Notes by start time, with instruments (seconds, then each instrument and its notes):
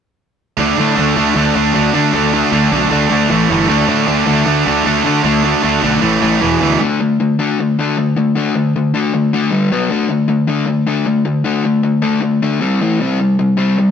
0.58 picked electric bass D2, overdriven electric guitar D3 A3 D4
0.78 picked electric bass A2, overdriven electric guitar D3 A3 D4
0.98 picked electric bass D2, overdriven electric guitar D3 A3 D4
1.17 picked electric bass D2, overdriven electric guitar D3 A3 D4
1.35 picked electric bass D2, overdriven electric guitar D3 A3 D4
1.55 picked electric bass D2, overdriven electric guitar D3 A3 D4
1.74 picked electric bass D2, overdriven electric guitar D3 A3 D4
1.93 overdriven electric guitar D3 A3 D4, picked electric bass D3
2.14 picked electric bass D2, overdriven electric guitar D3 A3 D4
2.33 overdriven electric guitar D3 A3 D4
2.52 picked electric bass D2, overdriven electric guitar D3 A3 D4
2.72 picked electric bass B1, overdriven electric guitar D3 A3 D4
2.91 picked electric bass D2, overdriven electric guitar D3 A3 D4
3.10 picked electric bass D2, overdriven electric guitar D3 A3 D4
3.29 picked electric bass A1, overdriven electric guitar A2 E3 A3
3.50 picked electric bass G1, overdriven electric guitar A2 E3 A3
3.68 picked electric bass D2, overdriven electric guitar D3 A3 D4
3.88 picked electric bass A2, overdriven electric guitar D3 A3 D4
4.07 picked electric bass D2, overdriven electric guitar D3 A3 D4
4.26 picked electric bass D2, overdriven electric guitar D3 A3 D4
4.46 picked electric bass D2, overdriven electric guitar D3 A3 D4
4.66 picked electric bass D2, overdriven electric guitar D3 A3 D4
4.85 picked electric bass D2, overdriven electric guitar D3 A3 D4
5.04 overdriven electric guitar D3 A3 D4, picked electric bass D3
5.24 picked electric bass D2, overdriven electric guitar D3 A3 D4
5.44 overdriven electric guitar D3 A3 D4
5.64 picked electric bass D2, overdriven electric guitar D3 A3 D4
5.83 picked electric bass B1, overdriven electric guitar D3 A3 D4
6.02 picked electric bass A1, overdriven electric guitar A2 E3 A3
6.22 picked electric bass A1, overdriven electric guitar A2 E3 A3
6.41 picked electric bass E1, overdriven electric guitar E2 B2 E3
6.60 picked electric bass D2, overdriven electric guitar E2 B2 E3
6.81 overdriven electric guitar D3 A3 D4
7.00 overdriven electric guitar D3 A3
7.20 overdriven electric guitar D3 A3
7.39 overdriven electric guitar D3 A3 D4
7.59 overdriven electric guitar D3 A3
7.79 overdriven electric guitar D3 A3 D4
7.98 overdriven electric guitar D3 A3
8.16 overdriven electric guitar D3 A3
8.35 overdriven electric guitar D3 A3 D4
8.55 overdriven electric guitar D3 A3
8.76 overdriven electric guitar D3 A3
8.94 overdriven electric guitar D3 A3 D4
9.14 overdriven electric guitar D3 A3
9.33 overdriven electric guitar D3 A3 D4
9.51 overdriven electric guitar G2 D3 G3
9.72 overdriven electric guitar B2 F#3 B3
9.90 overdriven electric guitar D3 A3 D4
10.09 overdriven electric guitar D3 A3
10.28 overdriven electric guitar D3 A3
10.47 overdriven electric guitar D3 A3 D4
10.66 overdriven electric guitar D3 A3
10.87 overdriven electric guitar D3 A3 D4
11.06 overdriven electric guitar D3 A3
11.25 overdriven electric guitar D3 A3
11.44 overdriven electric guitar D3 A3 D4
11.64 overdriven electric guitar D3 A3
11.83 overdriven electric guitar D3 A3
12.02 overdriven electric guitar D3 A3 D4
12.21 overdriven electric guitar D3 A3
12.42 overdriven electric guitar D3 A3 D4
12.61 overdriven electric guitar C3 G3 C4
12.81 overdriven electric guitar A2 E3 A3
13.01 overdriven electric guitar C3 G3 C4
13.20 overdriven electric guitar C3 G3
13.39 overdriven electric guitar C3 G3
13.57 overdriven electric guitar C3 G3 C4
13.78 overdriven electric guitar C3 G3